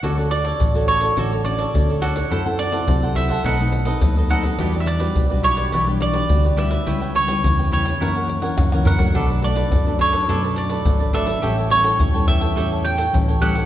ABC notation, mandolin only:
X:1
M:4/4
L:1/16
Q:1/4=105
K:D
V:1 name="Mandolin"
f2 d4 c4 d4 f2- | f2 d4 e2 f6 f2- | f3/2 e/2 d4 c4 d4 e2- | e2 c4 c8 f2- |
f2 d4 c4 d4 e2- | e2 c4 e4 g4 f2 |]